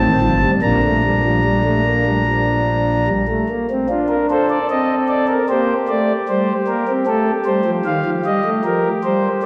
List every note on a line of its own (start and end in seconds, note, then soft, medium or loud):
0.00 0.18 D#3 medium
0.00 0.51 C4 medium
0.00 0.50 A5 medium
0.21 0.46 G1 medium
0.21 0.46 G2 medium
0.21 0.38 F3 medium
0.43 0.60 G3 medium
0.62 3.09 A#1 medium
0.62 3.09 A#2 medium
0.62 0.79 A#3 medium
0.62 3.09 D4 medium
0.62 3.09 A#5 medium
0.83 1.00 A3 medium
1.04 1.21 G3 medium
1.25 1.41 F3 medium
1.44 1.61 G3 medium
1.65 1.82 A3 medium
1.86 2.03 A#3 medium
2.06 2.23 G3 medium
2.26 2.96 F3 medium
3.07 3.25 G3 medium
3.29 3.46 A3 medium
3.49 3.66 A#3 medium
3.70 3.87 C4 medium
3.89 4.58 D4 medium
3.89 4.14 F4 medium
4.09 4.26 A#4 medium
4.30 5.32 A4 medium
4.30 4.47 C5 medium
4.50 4.67 D5 medium
4.70 5.38 C4 medium
4.70 4.94 D#5 medium
5.08 5.26 D5 medium
5.28 5.45 A#4 medium
5.49 5.74 A#3 medium
5.49 9.46 G4 medium
5.49 5.73 C5 medium
5.88 6.13 A3 medium
5.88 6.13 D5 medium
6.28 6.53 G3 medium
6.28 6.53 C5 medium
6.67 6.84 A#3 medium
6.67 6.92 A#4 medium
6.88 7.04 C4 medium
7.07 7.31 A3 medium
7.07 7.31 A4 medium
7.46 7.62 G3 medium
7.46 7.70 C5 medium
7.65 7.82 F3 medium
7.85 8.02 D#3 medium
7.85 8.10 F5 medium
8.05 8.22 F3 medium
8.25 8.42 G3 medium
8.25 8.49 D#5 medium
8.45 8.61 A3 medium
8.64 8.89 F3 medium
8.64 8.89 A#4 medium
9.03 9.28 G3 medium
9.03 9.28 C5 medium